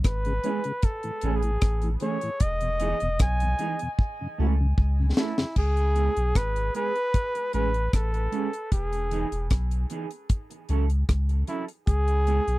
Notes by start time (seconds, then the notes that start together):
0.04 G#1 B4, kick, cross-stick, closed hi-hat
0.25 C#3 G#3, closed hi-hat
0.43 G#3 B3 C#4 E4 G#4, closed hi-hat
0.64 C#3 G#3, closed hi-hat
0.82 A4, kick, closed hi-hat
1.03 A2 E3, closed hi-hat
1.21 A1 E3 A3 C#4 G#4, closed hi-hat
1.36 G#4
1.43 A2 E3, closed hi-hat
1.61 A1, kick, cross-stick, closed hi-hat
1.82 A2 E3, closed hi-hat
2.00 E3 A3 C#4 G#4 C#5, closed hi-hat
2.21 A2 E3, closed hi-hat
2.40 E1 D#5, kick, closed hi-hat
2.61 E2 B2, closed hi-hat
2.80 E3 G#3 B3 D#4 E4 G#4, closed hi-hat
3.00 E1 E2 B2, closed hi-hat
3.19 B1 G#5, kick, cross-stick, closed hi-hat
3.40 E2 B2, closed hi-hat
3.59 E3 G#3 B3 D#4 E4 G#4, closed hi-hat
3.79 E2 B2, closed hi-hat
3.99 kick
4.21 F#2 C#3
4.38 C#2 A3 C#4 E4 F#4 A4
4.61 F#2 C#3
4.78 C#2, kick
5.00 F#2 C#3
5.17 A3 C#4 E4 F#4 A4, snare
5.38 F#2 C#3, muted clean electric guitar stroke, snare
5.56 C#2 G#4, kick, crash
5.77 closed hi-hat
5.95 G#3 B3 E4 G#4, closed hi-hat
6.17 B1, closed hi-hat
6.35 G#1 B4, kick, cross-stick, closed hi-hat
6.56 closed hi-hat
6.75 G#3 B3 E4 G#4 B4, closed hi-hat
6.96 closed hi-hat
7.14 kick, closed hi-hat
7.35 muted clean electric guitar stroke, closed hi-hat
7.53 A1 G#3 C#4 E4 G#4 B4, closed hi-hat
7.74 closed hi-hat
7.93 A1 A4, kick, cross-stick, closed hi-hat
8.14 muted clean electric guitar stroke, closed hi-hat
8.32 G#3 C#4 E4 G#4, closed hi-hat
8.53 closed hi-hat
8.72 E1 G#4, kick, closed hi-hat
8.93 closed hi-hat
9.11 E3 B3 D#4 G#4, closed hi-hat
9.32 E1, closed hi-hat
9.50 B1, kick, cross-stick, closed hi-hat
9.71 closed hi-hat
9.90 E3 B3 D#4 G#4, closed hi-hat
10.11 closed hi-hat
10.29 kick, closed hi-hat
10.50 muted clean electric guitar stroke, closed hi-hat
10.69 C#2 F#3 C#4 E4 A4, closed hi-hat
10.90 closed hi-hat
11.09 C#2, kick, cross-stick, closed hi-hat
11.29 muted clean electric guitar stroke, closed hi-hat
11.47 F#3 C#4 E4 A4, closed hi-hat
11.68 closed hi-hat
11.87 C#2 G#4, kick, closed hi-hat
12.08 closed hi-hat
12.27 G#3 B3 E4 G#4, closed hi-hat
12.47 B1, closed hi-hat